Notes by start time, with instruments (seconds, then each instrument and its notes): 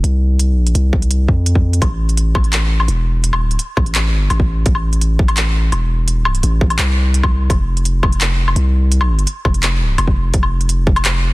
0.04 808-style bass C2, closed hi-hat
0.39 closed hi-hat
0.53 808-style bass B1
0.67 closed hi-hat
0.75 808-style bass C2, closed hi-hat
0.93 kick
1.02 closed hi-hat
1.11 closed hi-hat
1.28 808-style bass F2, kick
1.46 closed hi-hat
1.55 kick
1.73 closed hi-hat
1.82 808-style bass A1, kick, closed hi-hat, low woodblock
2.09 closed hi-hat
2.17 closed hi-hat
2.35 kick, low woodblock
2.44 closed hi-hat
2.53 clap, closed hi-hat
2.80 low woodblock
2.88 808-style bass E1, closed hi-hat
3.24 closed hi-hat
3.33 low woodblock
3.37 808-style bass D#1
3.51 closed hi-hat
3.59 closed hi-hat
3.77 808-style bass A1, kick, low woodblock
3.86 closed hi-hat
3.95 clap, closed hi-hat
4.30 808-style bass A1, closed hi-hat, low woodblock
4.40 kick
4.66 kick, closed hi-hat
4.75 low woodblock
4.93 closed hi-hat
5.01 closed hi-hat
5.19 kick
5.28 closed hi-hat, low woodblock
5.37 clap, closed hi-hat
5.72 808-style bass E1, closed hi-hat, low woodblock
6.08 closed hi-hat
6.25 low woodblock
6.35 closed hi-hat
6.43 808-style bass A1, closed hi-hat
6.61 kick
6.70 closed hi-hat, low woodblock
6.79 808-style bass C2, clap, closed hi-hat
7.14 closed hi-hat
7.23 kick, low woodblock
7.50 808-style bass F1, kick, closed hi-hat, low woodblock
7.77 closed hi-hat
7.85 closed hi-hat
8.03 kick, low woodblock
8.12 closed hi-hat
8.21 clap, closed hi-hat
8.48 low woodblock
8.56 808-style bass C2, closed hi-hat
8.92 closed hi-hat
9.01 low woodblock
9.19 closed hi-hat
9.27 closed hi-hat
9.45 808-style bass F1, kick, low woodblock
9.54 closed hi-hat
9.63 clap, closed hi-hat
9.98 808-style bass F1, closed hi-hat, low woodblock
10.07 kick
10.34 808-style bass F1, kick, closed hi-hat
10.43 low woodblock
10.61 closed hi-hat
10.69 closed hi-hat
10.87 kick
10.96 closed hi-hat, low woodblock
11.05 clap, closed hi-hat